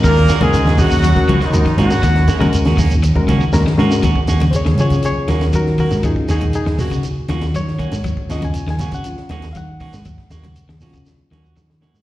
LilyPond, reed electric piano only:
\new Staff \with { instrumentName = "Reed electric piano" } { \time 4/4 \key ees \minor \tempo 4 = 120 << { r1 | r2. bes''4 | r4 <aes' c'' des''>8 <aes' des''>8 <aes' des''>8 <ges' bes'>8 <ges' bes'>8 <ges' bes'>8 | <ees' aes'>8 <ees' aes'>8 <ees' aes'>8 ges'8 r4 des''4~ |
des''8 ees''16 aes''8 aes''8 ges''4~ ges''16 <f'' ges''>4~ | <f'' ges''>2 r2 | } \\ { r8. <aes des' ges' bes'>8. r8. <aes des' ges' bes'>16 r8 <aes des' ges' bes'>16 r16 <aes des' ges' bes'>8 | r8. <aes des' ges' bes'>8. r8. <aes des' ges' bes'>16 r8 <aes des' ges' bes'>16 r16 <aes des' ges' bes'>8 | r4. <ges des' f'>2~ <ges des' f'>8 | <ges des' f'>2~ <ges des' f'>8 <ges des' f'>8 r4 |
r8 <ges des' f'>8 r4 <ges des' f'>8 r4. | r4. <ges des' f'>2~ <ges des' f'>8 | } >> }